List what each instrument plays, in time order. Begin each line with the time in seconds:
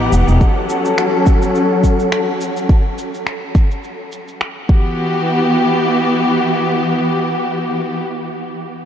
Already playing: string section E3 B3 G4 F#5
0.12 upright bass E1, shaker
0.28 upright bass E1, tabla na, shaker
0.41 string section F#3 C#4 A4, kick, shaker
0.70 shaker
0.85 shaker
0.98 finger snap, shaker
1.27 kick, shaker
1.42 shaker
1.55 shaker
1.84 kick, shaker
1.99 shaker
2.12 finger snap, shaker
2.41 shaker
2.57 shaker
2.69 kick, shaker
2.98 shaker
3.14 shaker
3.27 finger snap, shaker
3.55 kick, shaker
3.71 shaker
3.84 shaker
4.12 shaker
4.28 shaker
4.41 finger snap, shaker
4.69 string section E3 B3 F#4 G4, kick